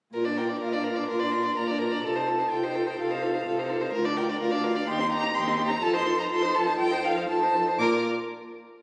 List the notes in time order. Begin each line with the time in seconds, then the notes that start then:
0.13 A#2 F4 A#4
0.25 D4 D5
0.37 F4 A#4 G5
0.48 D4 D5
0.60 A#2 F4 A#4 F5
0.68 D#5
0.72 D4 D5 F5
0.84 F4 A#4
0.95 D4 D5
1.08 A#2 F4 A#4 C6
1.19 D4 D5
1.32 F4 A#4
1.43 D4 D5
1.55 A#2 F4 A#4 A#5
1.67 D4 D5
1.78 F4 A#4
1.91 D4 D5
2.04 C3 F4 A4 A5
2.15 D#4 C5
2.27 F4 A4
2.39 D#4 C5
2.50 C3 F4 A4 G5
2.63 D#4 C5
2.75 F4 A4
2.86 D#4 C5
2.99 C3 F4 A4 F5
3.10 D#4 C5
3.22 F4 A4
3.34 D#4 C5
3.46 C3 F4 A4
3.58 D#4 C5
3.69 F4 A4
3.81 D#4 C5
3.93 D2 F4 A#4
4.05 D4 D5
4.16 F4 A#4 G5
4.28 D4 D5
4.40 D2 F4 A#4 F5
4.51 D4 D5
4.63 F4 A#4
4.75 D4 D5
4.87 D#2 D#4 G4 C6
4.98 C4 D#4
5.11 D#4 G4 A#5
5.22 C4 D#4
5.34 D#2 D#4 G4 C6
5.46 C4 D#4
5.57 D#4 G4
5.66 C4 D#4 A#5
5.82 F2 F4 A4 A5
5.93 D#4 C5 C6
6.05 F4 A4
6.18 D#4 C5 A#5
6.29 F2 F4 A4 C6
6.42 D#4 C5
6.54 F4 A4 A5
6.66 D#4 C5
6.78 F2 F4 A4 G5
6.91 D#4 C5
7.04 F4 A4 F5
7.17 D#4 C5
7.29 F2 F4 A4 A5
7.41 D#4 C5
7.54 F4 A4
7.66 D#4 C5
7.77 A#2 F4 A#4 D6